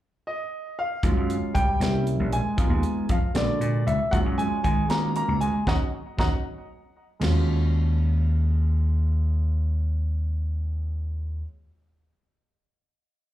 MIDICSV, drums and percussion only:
0, 0, Header, 1, 2, 480
1, 0, Start_track
1, 0, Key_signature, -6, "minor"
1, 0, Tempo, 515907
1, 957, Time_signature, 6, 3, 24, 8
1, 12402, End_track
2, 0, Start_track
2, 0, Title_t, "Drums"
2, 960, Note_on_c, 9, 36, 87
2, 962, Note_on_c, 9, 42, 73
2, 1053, Note_off_c, 9, 36, 0
2, 1055, Note_off_c, 9, 42, 0
2, 1209, Note_on_c, 9, 42, 52
2, 1302, Note_off_c, 9, 42, 0
2, 1442, Note_on_c, 9, 36, 69
2, 1448, Note_on_c, 9, 42, 60
2, 1535, Note_off_c, 9, 36, 0
2, 1541, Note_off_c, 9, 42, 0
2, 1687, Note_on_c, 9, 42, 79
2, 1698, Note_on_c, 9, 38, 93
2, 1780, Note_off_c, 9, 42, 0
2, 1791, Note_off_c, 9, 38, 0
2, 1924, Note_on_c, 9, 42, 51
2, 2017, Note_off_c, 9, 42, 0
2, 2164, Note_on_c, 9, 42, 61
2, 2257, Note_off_c, 9, 42, 0
2, 2400, Note_on_c, 9, 42, 71
2, 2401, Note_on_c, 9, 36, 89
2, 2493, Note_off_c, 9, 42, 0
2, 2494, Note_off_c, 9, 36, 0
2, 2635, Note_on_c, 9, 42, 53
2, 2728, Note_off_c, 9, 42, 0
2, 2876, Note_on_c, 9, 42, 56
2, 2879, Note_on_c, 9, 36, 69
2, 2969, Note_off_c, 9, 42, 0
2, 2972, Note_off_c, 9, 36, 0
2, 3117, Note_on_c, 9, 42, 76
2, 3128, Note_on_c, 9, 38, 100
2, 3210, Note_off_c, 9, 42, 0
2, 3221, Note_off_c, 9, 38, 0
2, 3364, Note_on_c, 9, 42, 57
2, 3457, Note_off_c, 9, 42, 0
2, 3606, Note_on_c, 9, 42, 56
2, 3699, Note_off_c, 9, 42, 0
2, 3841, Note_on_c, 9, 36, 90
2, 3846, Note_on_c, 9, 42, 67
2, 3934, Note_off_c, 9, 36, 0
2, 3939, Note_off_c, 9, 42, 0
2, 4086, Note_on_c, 9, 42, 51
2, 4179, Note_off_c, 9, 42, 0
2, 4321, Note_on_c, 9, 36, 71
2, 4324, Note_on_c, 9, 42, 54
2, 4414, Note_off_c, 9, 36, 0
2, 4417, Note_off_c, 9, 42, 0
2, 4557, Note_on_c, 9, 42, 72
2, 4568, Note_on_c, 9, 38, 90
2, 4650, Note_off_c, 9, 42, 0
2, 4661, Note_off_c, 9, 38, 0
2, 4797, Note_on_c, 9, 42, 57
2, 4890, Note_off_c, 9, 42, 0
2, 5036, Note_on_c, 9, 42, 57
2, 5129, Note_off_c, 9, 42, 0
2, 5275, Note_on_c, 9, 36, 77
2, 5282, Note_on_c, 9, 38, 77
2, 5368, Note_off_c, 9, 36, 0
2, 5375, Note_off_c, 9, 38, 0
2, 5755, Note_on_c, 9, 36, 90
2, 5766, Note_on_c, 9, 38, 83
2, 5848, Note_off_c, 9, 36, 0
2, 5859, Note_off_c, 9, 38, 0
2, 6713, Note_on_c, 9, 43, 82
2, 6713, Note_on_c, 9, 49, 70
2, 6724, Note_on_c, 9, 38, 81
2, 6806, Note_off_c, 9, 43, 0
2, 6806, Note_off_c, 9, 49, 0
2, 6817, Note_off_c, 9, 38, 0
2, 12402, End_track
0, 0, End_of_file